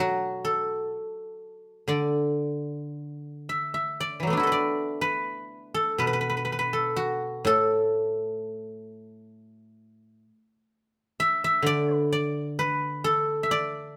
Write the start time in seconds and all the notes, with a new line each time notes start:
Already playing: B2 A4 B4 D5
0.00 F#3 F#4
0.45 A4
1.88 D3 D5
3.49 E5
3.74 E5
4.00 D5
4.20 E3 F#3
4.27 A3 B3
4.33 D4
4.37 E4 F#4
4.43 A4 B4
4.52 D5
5.01 B4
5.74 A4
5.98 B2 B4
6.07 B4
6.13 B4
6.21 B4
6.30 B4
6.37 B4
6.45 B4
6.52 B4
6.59 B4
6.73 A4
6.96 F#4
7.45 A2 A4
11.20 E5
11.44 E5
11.62 D3 D5
11.94 B4
12.12 D5
12.59 B4
13.04 A4
13.43 E5
13.51 D5